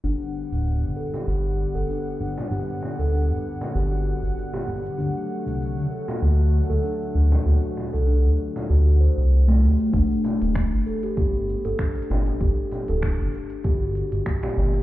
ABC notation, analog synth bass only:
X:1
M:4/4
L:1/16
Q:"Swing 16ths" 1/4=97
K:G
V:1 name="Analog synth bass" clef=bass
G,,, z2 D,,,2 G,,, z2 G,,,2 z G,,, z2 G,,, z | G,,, z2 D,,,2 G,,, z2 G,,,2 z G,,, z2 G,,, z | D,, z2 C,,2 D,, z2 D,,2 z D,, z2 D,, z | D,, z2 C,,2 D,, z2 D,,2 z C,,3 D,, z |
G,,, z2 D,,,2 G,,, z2 G,,,2 z G,,, z2 G,,, z | G,,, z2 D,,,2 G,,, z2 G,,,2 z G,,, z2 G,,, z |]